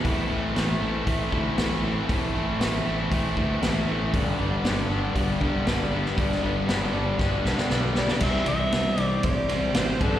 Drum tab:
CC |----------------|----------------|----------------|----------------|
RD |----------------|----------------|----------------|----------------|
HH |o---o---o---o---|o---o---o---o---|o---o---o---o---|o---o-----------|
SD |----o-------o---|----o-------o---|----o-------o--o|-o--o---o-ooo-oo|
BD |o-------o-o-----|o-------o-o-----|o-------o-o-----|o-------o-------|

CC |x---------------|
RD |--x-x-x-x-x-x-x-|
HH |----------------|
SD |----o-----o-o---|
BD |o-------o-----o-|